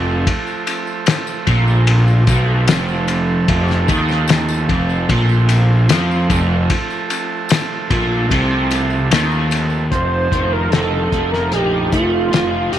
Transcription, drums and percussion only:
0.27 kick loud
0.27 ride medium
0.47 tambourine soft
0.67 ride medium
0.67 tambourine medium
0.87 tambourine soft
1.06 snare loud
1.06 ride loud
1.06 tambourine medium
1.27 tambourine medium
1.47 kick loud
1.47 ride medium
1.68 tambourine soft
1.87 ride medium
2.08 tambourine soft
2.27 kick loud
2.27 ride medium
2.27 tambourine medium
2.68 snare loud
2.68 ride loud
2.68 tambourine medium
2.88 tambourine soft
3.08 ride medium
3.08 tambourine medium
3.48 kick loud
3.48 ride medium
3.68 snare soft
3.68 tambourine soft
3.88 kick loud
3.88 ride medium
3.88 tambourine medium
4.09 snare soft
4.09 tambourine soft
4.28 snare loud
4.28 ride loud
4.28 tambourine medium
4.49 tambourine medium
4.69 kick loud
4.69 ride medium
4.89 tambourine soft
5.09 kick loud
5.09 ride medium
5.29 tambourine soft
5.49 ride medium
5.49 tambourine medium
5.89 snare loud
5.89 ride loud
5.89 tambourine loud
6.11 tambourine soft
6.30 kick loud
6.30 ride medium
6.30 tambourine medium
6.70 kick loud
6.70 ride loud
6.70 tambourine soft
6.90 tambourine soft
7.10 ride medium
7.10 tambourine medium
7.49 snare loud
7.49 ride loud
7.49 tambourine loud
7.91 kick loud
7.91 ride medium
7.91 tambourine soft
8.30 kick medium
8.30 ride loud
8.30 tambourine soft
8.71 ride medium
8.71 tambourine medium
8.90 tambourine soft
9.11 snare loud
9.11 ride loud
9.11 tambourine medium
9.31 tambourine soft
9.51 ride medium
9.51 tambourine medium
9.70 tambourine soft
9.92 kick loud
9.92 closed hi-hat medium
10.32 kick medium
10.32 closed hi-hat medium
10.72 snare loud
10.72 closed hi-hat medium
11.12 kick medium
11.12 closed hi-hat soft
11.33 snare soft
11.52 closed hi-hat medium
11.92 kick medium
11.92 closed hi-hat medium
12.33 snare loud
12.33 closed hi-hat medium
12.73 closed hi-hat medium

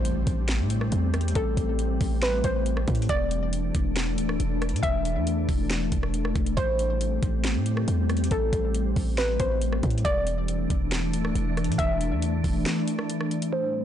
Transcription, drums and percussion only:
0.05 closed hi-hat medium
0.27 kick loud
0.27 closed hi-hat medium
0.49 snare loud
0.49 closed hi-hat medium
0.70 closed hi-hat medium
0.81 cross-stick medium
0.92 closed hi-hat medium
1.14 cross-stick loud
1.14 closed hi-hat soft
1.21 closed hi-hat medium
1.28 closed hi-hat medium
1.35 kick loud
1.35 closed hi-hat medium
1.57 kick medium
1.57 closed hi-hat medium
1.79 closed hi-hat medium
2.01 kick loud
2.01 open hi-hat medium
2.22 snare loud
2.22 closed hi-hat medium
2.44 kick medium
2.44 closed hi-hat medium
2.66 closed hi-hat medium
2.77 cross-stick medium
2.88 kick loud
2.88 closed hi-hat soft
2.95 closed hi-hat medium
3.02 closed hi-hat medium
3.09 kick loud
3.09 closed hi-hat medium
3.31 closed hi-hat medium
3.53 closed hi-hat medium
3.75 kick loud
3.75 closed hi-hat medium
3.96 snare loud
3.96 closed hi-hat medium
4.18 closed hi-hat medium
4.29 cross-stick medium
4.40 closed hi-hat medium
4.62 cross-stick loud
4.62 closed hi-hat soft
4.69 closed hi-hat medium
4.76 closed hi-hat medium
4.83 kick loud
4.83 closed hi-hat medium
5.05 closed hi-hat medium
5.27 closed hi-hat medium
5.49 kick loud
5.49 open hi-hat medium
5.70 snare loud
5.70 closed hi-hat medium
5.92 kick medium
5.92 closed hi-hat medium
6.03 cross-stick medium
6.14 closed hi-hat medium
6.25 cross-stick medium
6.36 kick loud
6.36 closed hi-hat soft
6.46 closed hi-hat medium
6.57 kick loud
6.57 closed hi-hat medium
6.79 closed hi-hat medium
7.01 closed hi-hat medium
7.23 kick loud
7.23 closed hi-hat medium
7.44 snare loud
7.44 closed hi-hat medium
7.66 closed hi-hat medium
7.77 cross-stick medium
7.88 closed hi-hat medium
8.09 cross-stick medium
8.09 closed hi-hat soft
8.17 closed hi-hat medium
8.24 closed hi-hat medium
8.31 kick loud
8.31 closed hi-hat medium
8.53 kick medium
8.53 closed hi-hat medium
8.75 closed hi-hat medium
8.96 kick loud
8.96 open hi-hat medium
9.18 snare loud
9.18 closed hi-hat medium
9.40 kick medium
9.40 closed hi-hat medium
9.62 closed hi-hat medium
9.73 cross-stick medium
9.83 kick loud
9.83 closed hi-hat soft
9.90 closed hi-hat medium
9.98 closed hi-hat medium
10.05 kick loud
10.05 closed hi-hat medium
10.27 closed hi-hat medium
10.48 closed hi-hat medium
10.70 kick loud
10.70 closed hi-hat medium
10.92 snare loud
10.92 closed hi-hat medium
11.13 closed hi-hat medium
11.25 cross-stick medium
11.35 closed hi-hat medium
11.57 cross-stick medium
11.57 closed hi-hat soft
11.64 closed hi-hat medium
11.72 closed hi-hat medium
11.79 kick loud
11.79 closed hi-hat medium
12.01 closed hi-hat medium
12.22 closed hi-hat medium
12.44 kick loud
12.44 open hi-hat medium
12.66 snare loud
12.66 closed hi-hat medium
12.88 closed hi-hat medium
12.99 cross-stick medium
13.10 closed hi-hat medium
13.21 cross-stick medium
13.31 closed hi-hat soft
13.42 closed hi-hat medium

